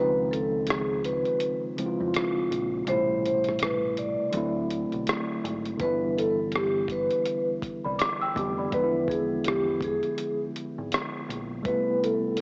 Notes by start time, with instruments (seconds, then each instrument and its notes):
Already playing: fingered electric bass C#2, tine electric piano C#3 D#3 F3 G#3 C4 F4, vibraphone B4
0.00 tine electric piano D#4
0.31 vibraphone A4, closed hi-hat
0.67 vibraphone G#4, cross-stick, closed hi-hat
1.05 vibraphone B4, closed hi-hat
1.26 closed hi-hat
1.40 closed hi-hat
1.76 tine electric piano C#3 F3 G#3 C4 E4, closed hi-hat
1.86 tine electric piano F4
2.01 fingered electric bass F2
2.14 cross-stick, closed hi-hat
2.51 fingered electric bass A#1, closed hi-hat
2.85 fingered electric bass A1, tine electric piano C3 G3 A3, closed hi-hat
2.89 tine electric piano B2 E4, vibraphone C5
3.26 vibraphone C5, closed hi-hat
3.44 closed hi-hat
3.49 cross-stick
3.59 vibraphone B4, cross-stick, closed hi-hat
3.97 vibraphone D5, closed hi-hat
4.30 fingered electric bass D2, tine electric piano D3 F#3 A3, closed hi-hat
4.35 tine electric piano C4 E4
4.70 closed hi-hat
4.92 fingered electric bass B1, closed hi-hat
5.07 cross-stick, closed hi-hat
5.44 fingered electric bass G#1, closed hi-hat
5.65 closed hi-hat
5.77 fingered electric bass G1, tine electric piano D3 E3 G3, kick, closed hi-hat
5.81 tine electric piano B3 E4, vibraphone B4
6.18 vibraphone A4, closed hi-hat
6.52 vibraphone G4, cross-stick, closed hi-hat
6.88 vibraphone B4, kick, closed hi-hat
7.10 closed hi-hat
7.25 closed hi-hat
7.62 kick, closed hi-hat
7.84 fingered electric bass C2, celesta D5 B5
7.99 celesta D6, cross-stick, closed hi-hat
8.21 celesta G5 E6
8.35 fingered electric bass F1, tine electric piano D3 E3 G3 B3 G4, celesta D6, kick, closed hi-hat
8.58 celesta D5 B5
8.70 fingered electric bass E1, tine electric piano D3 F3 G#3, kick, closed hi-hat
8.74 tine electric piano B3 D#4, vibraphone B4
8.83 tine electric piano E4
9.08 vibraphone G#4, kick, closed hi-hat
9.44 vibraphone G4, cross-stick, closed hi-hat
9.81 vibraphone G#4, kick, closed hi-hat
10.03 closed hi-hat
10.18 closed hi-hat
10.56 closed hi-hat
10.78 fingered electric bass G#1
10.92 cross-stick, closed hi-hat
11.29 fingered electric bass A#1, closed hi-hat
11.62 tine electric piano B2 G3 A3, kick, closed hi-hat
11.66 tine electric piano C3 B3 E4, vibraphone B4
12.03 vibraphone A4, closed hi-hat
12.37 closed hi-hat